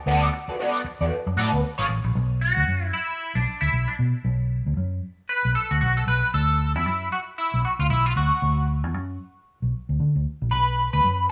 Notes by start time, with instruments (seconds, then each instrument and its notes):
0.06 fingered electric bass D2, clean electric guitar B3 F#4 A4 D5
0.33 muted clean electric guitar stroke
0.48 clean electric guitar B3 F#4 A4 D5, muted fingered electric bass stroke
0.59 clean electric guitar B3 F#4 A4 D5
0.84 muted fingered electric bass stroke, muted clean electric guitar stroke
1.01 fingered electric bass E2, clean electric guitar B3 F#4 A4 D5
1.26 fingered electric bass F#2, muted clean electric guitar stroke
1.37 fingered electric bass A2, clean electric guitar B3 F#4 A4 D5
1.52 fingered electric bass D2, muted clean electric guitar stroke
1.63 muted clean electric guitar stroke
1.78 fingered electric bass G#1, clean electric guitar B3 F#4 A4 D5
1.88 fingered electric bass A1, muted clean electric guitar stroke
2.04 fingered electric bass A#1, muted clean electric guitar stroke
2.15 fingered electric bass B1
2.41 clean electric guitar F#4
2.57 fingered electric bass D2
2.68 fingered electric bass F#2
2.84 clean electric guitar E4
2.93 clean electric guitar E4
3.35 fingered electric bass B1, clean electric guitar D4
3.61 fingered electric bass D2, clean electric guitar E4
3.72 fingered electric bass B1
3.88 clean electric guitar D4
3.99 fingered electric bass B2
4.25 fingered electric bass B1
4.66 fingered electric bass D2
4.77 fingered electric bass F#2
5.29 clean electric guitar B4
5.45 fingered electric bass B1
5.55 clean electric guitar A4
5.71 fingered electric bass D2, clean electric guitar F#4
5.81 fingered electric bass B1, clean electric guitar F#4
5.97 clean electric guitar A4
6.07 fingered electric bass B1, clean electric guitar B4
6.34 fingered electric bass D2, clean electric guitar A4
6.75 fingered electric bass E2, clean electric guitar E4
6.86 fingered electric bass F#2
7.12 clean electric guitar F#4
7.38 clean electric guitar E4
7.54 fingered electric bass B1
7.65 clean electric guitar F#4
7.79 fingered electric bass D2, clean electric guitar F4
7.89 fingered electric bass B1, clean electric guitar E4
8.06 clean electric guitar F4
8.16 fingered electric bass D2, clean electric guitar F#4
8.42 fingered electric bass D2
8.84 fingered electric bass E2
8.94 fingered electric bass F#2
9.62 fingered electric bass B1
9.89 fingered electric bass D2
10.00 fingered electric bass D3
10.15 fingered electric bass D2
10.42 fingered electric bass A#1
10.51 fingered electric bass B1, clean electric guitar B4
10.93 fingered electric bass D2, clean electric guitar B4
11.04 fingered electric bass F#2